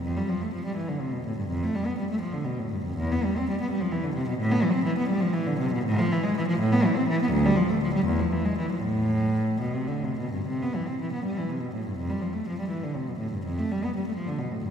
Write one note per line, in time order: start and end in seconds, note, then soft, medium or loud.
0.02 0.15 F2 medium
0.17 0.29 G3 medium
0.29 0.41 F3 medium
0.42 0.53 A3 medium
0.54 0.65 F3 medium
0.65 0.76 G3 medium
0.76 0.88 E3 medium
0.88 1.00 D3 medium
1.00 1.12 C3 medium
1.13 1.24 B2 soft
1.26 1.37 A2 medium
1.37 1.48 G2 medium
1.50 1.61 F2 medium
1.64 1.74 A3 medium
1.75 1.85 G3 medium
1.86 1.97 B3 medium
1.98 2.09 G3 medium
2.10 2.21 A3 medium
2.21 2.32 F3 medium
2.33 2.44 D3 medium
2.45 2.57 B2 medium
2.59 2.70 A2 medium
2.71 2.83 G2 medium
2.84 2.96 F2 medium
2.98 3.09 E2 medium
3.12 3.23 B3 medium
3.24 3.35 G3 medium
3.37 3.47 C4 medium
3.49 3.59 G3 medium
3.61 3.70 B3 medium
3.71 3.81 G3 medium
3.81 3.92 F3 medium
3.92 4.04 E3 medium
4.04 4.16 D3 medium
4.15 4.27 C3 medium
4.28 4.39 B2 medium
4.39 4.50 A2 loud
4.52 4.63 B3 medium
4.63 4.74 E3 medium
4.72 4.85 C4 medium
4.85 4.97 E3 medium
4.98 5.10 B3 medium
5.09 5.21 G3 medium
5.20 5.33 F3 medium
5.33 5.46 E3 medium
5.46 5.59 D3 medium
5.59 5.72 C3 medium
5.73 5.85 B2 medium
5.85 5.98 A2 loud
5.99 6.11 F3 medium
6.12 6.24 E3 medium
6.24 6.35 G#3 medium
6.37 6.48 E3 medium
6.48 6.60 F3 medium
6.59 6.72 A2 loud
6.73 6.85 B3 medium
6.85 6.97 E3 medium
6.97 7.09 C4 medium
7.08 7.21 E3 medium
7.22 7.34 B3 medium
7.32 7.44 D2 loud
7.46 7.58 G3 medium
7.56 7.69 F3 medium
7.69 7.82 A3 medium
7.83 7.95 F3 medium
7.94 8.06 G3 medium
8.05 8.18 E2 medium
8.20 8.32 F3 medium
8.32 8.45 E3 medium
8.45 8.58 G#3 medium
8.58 8.71 E3 medium
8.72 8.85 F3 medium
8.84 9.60 A2 medium
9.61 9.75 B2 medium
9.74 9.88 C3 medium
9.87 10.03 D3 medium
10.04 10.19 C3 medium
10.19 10.33 B2 medium
10.33 10.47 G2 medium
10.48 10.61 C3 medium
10.63 10.75 B3 medium
10.75 10.87 E3 medium
10.87 11.00 C4 soft
11.01 11.12 E3 soft
11.12 11.24 B3 medium
11.24 11.36 G3 medium
11.37 11.49 E3 medium
11.49 11.61 C3 soft
11.60 11.73 B2 soft
11.74 11.85 A2 medium
11.87 11.98 G2 soft
11.98 12.09 F2 medium
12.10 12.21 G3 medium
12.21 12.33 F3 medium
12.33 12.45 A3 medium
12.48 12.58 F3 medium
12.59 12.69 G3 medium
12.69 12.80 E3 medium
12.84 12.94 D3 soft
12.96 13.06 C3 soft
13.08 13.19 B2 soft
13.19 13.30 A2 medium
13.33 13.43 G2 soft
13.45 13.56 F2 medium
13.59 13.69 A3 medium
13.71 13.81 G3 medium
13.84 13.94 B3 medium
13.96 14.05 G3 medium
14.07 14.16 A3 medium
14.16 14.27 F3 medium
14.28 14.38 D3 medium
14.38 14.50 B2 medium
14.51 14.62 A2 soft
14.63 14.71 G2 medium